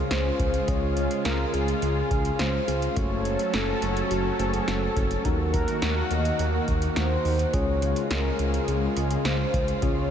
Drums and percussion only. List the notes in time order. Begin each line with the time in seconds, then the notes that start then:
0.11 snare, closed hi-hat
0.39 kick, closed hi-hat
0.54 closed hi-hat
0.68 kick, closed hi-hat
0.97 closed hi-hat
1.11 closed hi-hat
1.25 snare, closed hi-hat
1.54 closed hi-hat
1.68 closed hi-hat
1.82 closed hi-hat
2.11 kick, closed hi-hat
2.25 closed hi-hat
2.39 snare, closed hi-hat
2.68 closed hi-hat
2.82 closed hi-hat
2.97 kick, closed hi-hat
3.25 closed hi-hat
3.39 closed hi-hat
3.54 snare, closed hi-hat
3.82 closed hi-hat
3.97 closed hi-hat
4.11 closed hi-hat
4.40 closed hi-hat
4.54 closed hi-hat
4.68 snare, closed hi-hat
4.96 kick, closed hi-hat
5.11 closed hi-hat
5.25 kick, closed hi-hat
5.54 kick, closed hi-hat
5.68 closed hi-hat
5.82 snare, closed hi-hat
6.11 closed hi-hat
6.25 closed hi-hat
6.39 closed hi-hat
6.68 kick, closed hi-hat
6.82 closed hi-hat
6.96 snare, closed hi-hat
7.25 open hi-hat
7.39 closed hi-hat
7.54 kick, closed hi-hat
7.82 closed hi-hat
7.96 closed hi-hat
8.11 snare, closed hi-hat
8.39 closed hi-hat
8.54 closed hi-hat
8.68 closed hi-hat
8.97 closed hi-hat
9.11 closed hi-hat
9.25 snare, closed hi-hat
9.54 kick, closed hi-hat
9.68 closed hi-hat
9.82 kick, closed hi-hat